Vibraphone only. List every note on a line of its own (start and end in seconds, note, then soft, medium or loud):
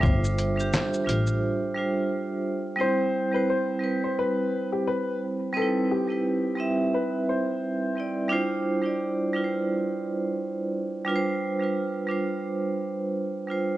0.00 0.51 G3 loud
0.00 0.52 D4 loud
0.00 0.53 F4 loud
0.00 0.21 A4 medium
0.00 0.53 C5 loud
0.00 0.21 E5 medium
0.56 1.03 G3 medium
0.56 1.04 D4 medium
0.56 1.05 F4 medium
0.60 1.05 G4 loud
1.04 1.70 G3 medium
1.04 1.71 D4 medium
1.04 1.72 F4 medium
1.09 1.73 C5 medium
1.75 2.72 G3 medium
1.75 2.73 D4 medium
1.75 2.74 F4 medium
1.79 2.75 C5 medium
2.76 3.27 G3 loud
2.76 3.28 C4 medium
2.76 3.29 E4 medium
2.80 3.30 C5 loud
3.32 3.78 G3 medium
3.32 3.80 C4 medium
3.32 3.80 E4 medium
3.36 3.81 C5 medium
3.79 5.11 G3 medium
3.79 5.12 C4 medium
3.79 5.12 E4 medium
3.84 5.13 B4 medium
5.53 6.04 G3 loud
5.53 6.04 C4 loud
5.53 5.62 D#4 medium
5.57 6.06 B4 loud
5.62 6.08 E4 medium
6.08 6.55 G3 medium
6.08 6.56 C4 medium
6.08 6.56 E4 medium
6.12 6.57 B4 medium
6.56 7.87 G3 medium
6.56 7.88 C4 medium
6.56 7.88 E4 medium
6.60 7.89 E5 medium
7.95 8.27 G3 medium
7.95 8.29 C4 medium
7.95 8.29 E4 medium
8.00 8.30 D5 medium
8.28 8.79 G3 medium
8.28 8.80 D4 loud
8.28 8.80 E4 medium
8.28 8.81 F4 medium
8.33 8.82 C5 loud
8.82 9.30 G3 medium
8.82 9.30 D4 medium
8.82 9.31 E4 medium
8.82 9.31 F4 medium
8.86 9.32 D5 medium
9.33 10.64 G3 medium
9.33 10.64 D4 medium
9.33 10.65 E4 medium
9.33 10.65 F4 medium
9.38 9.43 B4 medium
9.44 10.69 C5 medium
11.05 11.56 G3 loud
11.05 11.56 D4 medium
11.05 11.57 F4 medium
11.09 11.15 B4 medium
11.16 11.61 C5 loud
11.59 12.06 G3 medium
11.59 12.07 D4 medium
11.59 12.08 F4 medium
11.64 12.09 B4 medium
12.07 13.38 G3 medium
12.07 13.39 D4 medium
12.07 13.40 F4 medium
12.11 13.41 C5 medium
13.47 13.77 G3 medium
13.47 13.77 D4 medium
13.47 13.77 F4 medium
13.51 13.77 C5 medium